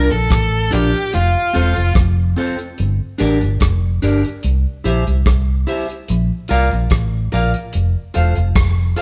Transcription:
Already playing: C2 A#4
0.11 A#1 A4, closed hi-hat
0.30 A1, kick, cross-stick, closed hi-hat
0.71 A#1 D4 F4 G4 A#4 D5, closed hi-hat
0.95 closed hi-hat
1.13 F1 F4, closed hi-hat
1.53 E1 C4 F4 A4 C5, closed hi-hat
1.76 F1, closed hi-hat
1.95 F1, kick, cross-stick, closed hi-hat
2.36 C4 F4 A4 C5, open hi-hat
2.59 closed hi-hat
2.78 G1, closed hi-hat
3.18 A1 D4 G4 A#4 D5, closed hi-hat
3.41 G1, closed hi-hat
3.60 F1, kick, cross-stick, closed hi-hat
4.02 G1 D4 G4 A#4 D5, closed hi-hat
4.25 closed hi-hat
4.43 C2, closed hi-hat
4.84 A#1 E4 G4 C5 E5, closed hi-hat
5.07 C2, closed hi-hat
5.26 C2, kick, cross-stick, closed hi-hat
5.67 E4 G4 C5 E5, open hi-hat
5.89 closed hi-hat
6.08 A#1, closed hi-hat
6.48 C2 F4 A#4 D5 F5, closed hi-hat
6.71 A#1, closed hi-hat
6.90 A1, kick, cross-stick, closed hi-hat
7.32 A#1 F4 A#4 D5 F5, closed hi-hat
7.54 closed hi-hat
7.73 F1, closed hi-hat
8.14 E1 F4 A4 C5 F5, closed hi-hat
8.36 F1, closed hi-hat
8.56 F1, kick, cross-stick, closed hi-hat
8.96 F4 A4 C5 F5, closed hi-hat

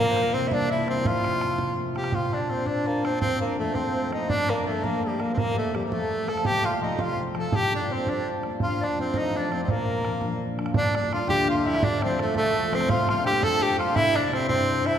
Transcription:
Already playing: C2 A#3 C4 D4 F4 G4
0.00 C3 A#3 A#4
0.11 C5
0.16 G3, bodhran
0.23 A#4
0.33 C3 C4
0.48 D4 E4, bodhran
0.52 G3 D4 D5
0.61 bodhran
0.70 C3 E4 E5
0.86 G3 C4 C5, bodhran
1.05 F1 F2 F4 F5, bodhran
1.24 C3, bodhran
1.41 C4, bodhran
1.58 C3, bodhran
1.69 bodhran
1.78 A3
1.95 C4 G4 G5, bodhran
2.04 bodhran
2.12 A#2 F4 F5, bodhran
2.32 D4 D5
2.49 A#3 C4 D4 C5
2.66 A#3 C4 D4 D5, bodhran
2.87 A#3
3.03 A#3 C4 D4 C5, bodhran
3.20 F2 C4 C5, bodhran
3.41 A#3 A#4
3.59 F3 A3 C4 A4
3.69 D4
3.74 F3 A3 C4 C5, bodhran
4.12 F3 A3 C4 D#4 D#5, bodhran
4.29 G2 D4 D5, bodhran
4.48 A#3 A#4
4.66 F3 G3 A3 A#3 A4
4.83 F3 G3 A#3 A#4, bodhran
5.03 G3 G4
5.19 F3 G3 A#3 A#4, bodhran
5.34 A#3 C4 A#4, bodhran
5.38 F2 A#3
5.53 G4
5.58 A3 A4
5.74 F3 G3 A3 C4 G4, bodhran
5.85 A#3
5.91 F3 A3 C4 A4, bodhran
6.27 F3 A3 C4 A4 A5, bodhran
6.37 bodhran
6.43 C2 G4 G5, bodhran
6.64 F4 F5
6.80 F3 A3 C4 D#4 D#5
6.95 F3 F4 G5, bodhran
6.99 A3 C4 F4 F5
7.35 F3 A3 C4 A4 A5, bodhran
7.53 G2 G4 G5, bodhran
7.72 D4 D5
7.90 G3 A#3 C4 D4 C5
8.06 G3 A#3 D4 D5, bodhran
8.43 G3 A#3 D4, bodhran
8.60 F2 F4 F5, bodhran
8.80 D4 D5
8.98 F3 A3 C4 C5
9.14 F3 A3 C4 D#4 D#5, bodhran
9.18 D#4
9.36 D4 D5
9.52 F3 A3 C4, bodhran
9.63 C4
9.68 A#2 A#3 A#4, bodhran
10.05 F3 A#3 D4, bodhran
10.21 F3 A#3 D4, bodhran
10.59 F3 A#3 D4, bodhran
10.66 bodhran
10.74 G1 G2 D4 D5, bodhran
10.95 G3 A#3 D4, bodhran
11.12 G3 A#3 D4 F4 F5, bodhran
11.28 D2 G4 G5, bodhran
11.48 G3 A#3 D4 F4 F5
11.62 G3 F4 E5
11.67 A#3 D4 E4
11.73 F4, bodhran
11.81 F1 F2 D4 D5, bodhran
12.02 F3 G3 A3 C4 C5, bodhran
12.19 F3 G3 A3 A4, bodhran
12.36 C2 A3 A4, bodhran
12.55 F3 G3 A3
12.71 F3 G3 A3 C4 C5, bodhran
12.81 bodhran
12.89 A#1 A#2 F4 F5, bodhran
13.09 G3 A#3 D4 F4 F5, bodhran
13.25 G3 A#3 D4 G4 G5, bodhran
13.41 F2 A4 A5, bodhran
13.61 G3 A#3 D4 G4 G5
13.78 G3 A#3 D4 F4 F5, bodhran
13.95 C2 C3 E4 E5, bodhran
14.14 C4 D4 E4 D5, bodhran
14.32 C4 D4 E4, bodhran
14.48 G2 C4 C5, bodhran
14.70 C4 D4 E4
14.86 C4 D4 E4 E5, bodhran
14.95 bodhran

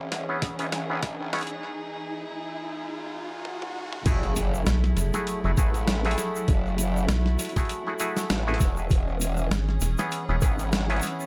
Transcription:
Already playing: E3 C#4 G#4, riser
0.11 E1, snare, closed hi-hat
0.29 B3 C#4 E4 G#4
0.42 kick, snare, closed hi-hat
0.59 E1 B3 C#4 E4 G#4, closed hi-hat
0.72 G#1, snare, closed hi-hat
0.90 B3 C#4 E4 G#4
1.03 kick, snare, closed hi-hat
1.33 B3 C#4 E4 C#5, snare, closed hi-hat
1.36 closed hi-hat
1.39 closed hi-hat
1.41 closed hi-hat
1.47 closed hi-hat
1.63 D#4
2.84 swell
3.45 high tom
3.62 high tom
3.93 mid tom
4.06 F#1 F#3 A3 E4 F#4 G#4, kick, closed hi-hat, crash, impact, shaker
4.23 closed hi-hat
4.36 closed hi-hat, shaker
4.54 shaker
4.66 B1, snare, shaker
4.84 snare
4.97 F#1, closed hi-hat, shaker
5.14 A3 E4 F#4 G#4, snare, shaker
5.27 closed hi-hat, shaker
5.44 F#1 A3 E4 F#4 G#4
5.57 A1 A3 E4 F#4 G#4, kick, closed hi-hat, shaker
5.74 closed hi-hat, shaker
5.88 snare, closed hi-hat, shaker
6.05 A3 E4 F#4 G#4, closed hi-hat
6.11 closed hi-hat
6.18 closed hi-hat, shaker
6.36 shaker
6.48 F#1 F#4, kick, closed hi-hat, shaker
6.78 closed hi-hat, shaker
6.97 shaker
7.09 B1, snare, shaker
7.26 snare
7.39 closed hi-hat, shaker
7.45 closed hi-hat
7.49 closed hi-hat
7.56 A3 E4 F#4 G#4, kick, snare, closed hi-hat, shaker
7.59 closed hi-hat
7.65 closed hi-hat
7.69 closed hi-hat, shaker
7.87 A3 E4 F#4 G#4
7.99 A3 E4 F#4 G#4, closed hi-hat, shaker
8.17 snare, closed hi-hat, shaker
8.30 A1, snare, closed hi-hat, shaker
8.47 A3 E4 F#4 G#4
8.54 closed hi-hat
8.60 E1, kick, closed hi-hat, shaker
8.77 shaker
8.90 E1 E3 C#4 G#4, kick, closed hi-hat, shaker
9.21 closed hi-hat, shaker
9.37 shaker
9.51 G#1, snare, shaker
9.69 snare
9.81 E1, closed hi-hat, shaker
9.98 B3 C#4 E4 G#4, snare, shaker
10.12 closed hi-hat, shaker
10.29 E1 B3 C#4 E4 G#4
10.41 G#1 B3 C#4 E4 G#4, kick, closed hi-hat, shaker
10.59 closed hi-hat, shaker
10.72 snare, closed hi-hat, shaker
10.89 B3 C#4 E4 G#4, closed hi-hat
10.96 closed hi-hat
11.00 closed hi-hat, shaker
11.03 closed hi-hat
11.07 closed hi-hat
11.20 shaker

